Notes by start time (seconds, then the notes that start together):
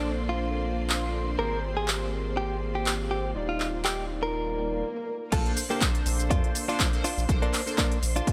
Already playing: A#1 A#3 C4 D4 F4 A4 C5 D5 C6
0.29 F4
0.90 clap
1.38 G#1 A#3 G4 G#4 A#4 C5
1.77 G#4
1.88 clap
2.37 G4
2.75 G4
2.86 clap
3.11 G4
3.34 D#1 G3 D#4 F4 D5
3.49 F4
3.60 clap
3.85 G4, clap
4.23 A#4
4.34 swell
5.32 A#1 A#3 D4 F4 A4 C5 C6, kick, closed hi-hat, crash, shaker
5.46 closed hi-hat
5.57 closed hi-hat, open hi-hat, shaker
5.69 A#3 D4 G4 A4 C5, shaker
5.81 kick, snare, clap, closed hi-hat, shaker
5.95 closed hi-hat
6.06 A#1, closed hi-hat, open hi-hat, shaker
6.19 closed hi-hat, shaker
6.30 F2 D4 F4, kick, closed hi-hat, shaker
6.44 closed hi-hat
6.55 closed hi-hat, open hi-hat, shaker
6.68 A#3 D4 F4 A4 C5, snare, shaker
6.80 kick, snare, clap, closed hi-hat, shaker
6.92 A#3 D4 A4 C5, closed hi-hat
7.04 D4 F4, closed hi-hat, open hi-hat, shaker
7.18 A#1, shaker
7.28 A#1 A#3 D4 A4 C5, kick, closed hi-hat, shaker
7.42 A#3 D4, snare, closed hi-hat
7.53 clap, closed hi-hat, open hi-hat, shaker
7.66 A#3 D4 A4 C5, shaker
7.78 A#3 D4, kick, snare, clap, closed hi-hat, shaker
7.92 closed hi-hat
8.03 A#1, closed hi-hat, open hi-hat, shaker
8.16 D4 F4, closed hi-hat, shaker
8.27 kick, closed hi-hat, shaker